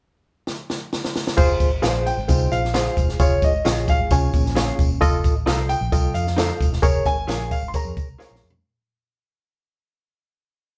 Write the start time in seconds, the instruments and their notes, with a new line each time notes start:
0.47 snare
0.70 snare
0.93 snare
1.05 snare
1.16 snare
1.27 snare
1.37 fingered electric bass F1, reed electric piano F4 G#4 C5, kick, crash, tambourine
1.60 fingered electric bass G#1, kick, closed hi-hat, tambourine
1.82 fingered electric bass A#1, reed electric piano F4 G#4 B4, clean electric guitar F4 G#4 C5 F5, snare, closed hi-hat, tambourine
1.88 reed electric piano C5
2.06 grand piano G5, closed hi-hat, tambourine
2.17 fingered electric bass G#1
2.28 fingered electric bass C2, clean electric guitar C4 D#4, reed electric piano F4 G#4 C5, kick, closed hi-hat, tambourine
2.51 fingered electric bass A#1, clean electric guitar F4, grand piano F5, closed hi-hat, tambourine
2.65 snare
2.74 clean electric guitar F4 G#4 C5 F5, reed electric piano F4 G#4 C5, snare, closed hi-hat, tambourine
2.97 fingered electric bass E1, kick, closed hi-hat, tambourine
3.09 snare
3.20 fingered electric bass F1, reed electric piano F4 G#4 C#5, grand piano C#5, kick, closed hi-hat, tambourine
3.42 fingered electric bass G#1, grand piano D#5, kick, closed hi-hat, tambourine
3.65 fingered electric bass A#1, clean electric guitar F4 G#4 C#5 F5, reed electric piano F4 G#4 C#5, snare, closed hi-hat, tambourine
3.88 clean electric guitar F4 G#4, grand piano F5, kick, closed hi-hat, tambourine
3.99 fingered electric bass G#1
4.10 fingered electric bass C2, clean electric guitar C#4 F4, reed electric piano F4 G#4 C#5, grand piano G#5, kick, closed hi-hat, tambourine
4.33 fingered electric bass A#1, clean electric guitar A#3 C#4, kick, closed hi-hat, tambourine
4.46 snare
4.55 clean electric guitar F4 G#4 C#5 F5, reed electric piano F4 G#4 C#5, snare, closed hi-hat, tambourine
4.79 fingered electric bass E1, kick, closed hi-hat, tambourine
5.01 fingered electric bass F1, reed electric piano F4 A4 D#5, kick, closed hi-hat, tambourine
5.24 fingered electric bass A1, kick, closed hi-hat, tambourine
5.46 fingered electric bass C2, clean electric guitar D#4 A4 C5 F5, reed electric piano F4 A4 D#5, snare, closed hi-hat, tambourine
5.69 grand piano G5, closed hi-hat, tambourine
5.81 fingered electric bass A#1
5.92 fingered electric bass C2, reed electric piano F4 A4 D#5, kick, closed hi-hat, tambourine
6.14 fingered electric bass F2, grand piano F5, closed hi-hat, tambourine
6.27 snare
6.37 clean electric guitar D#4 A4 C5 F5, reed electric piano F4 A4 D#5, snare, closed hi-hat, tambourine
6.60 fingered electric bass E1, kick, closed hi-hat, tambourine
6.73 snare
6.82 fingered electric bass F1, reed electric piano G#4 A#4 C#5, grand piano C#5, kick, closed hi-hat, tambourine
7.05 fingered electric bass G#1, grand piano G#5, kick, closed hi-hat, tambourine
7.28 fingered electric bass A#1, clean electric guitar F4 G#4 C#5 F5, reed electric piano G#4 A#4 C#5, snare, closed hi-hat, tambourine
7.51 grand piano F5, kick, closed hi-hat, tambourine
7.62 fingered electric bass G#1
7.68 grand piano C6
7.74 reed electric piano G#4 A#4 C#5, grand piano A#5, kick, closed hi-hat, tambourine
7.85 fingered electric bass F2
7.97 fingered electric bass C#2, kick, closed hi-hat, tambourine
8.08 fingered electric bass C2
8.19 clean electric guitar F4 G#4 C#5 F5, reed electric piano G#4 A#4 C5, snare, tambourine
8.25 reed electric piano C#5
8.31 fingered electric bass A#1
8.36 snare
8.43 fingered electric bass F2, tambourine
8.50 floor tom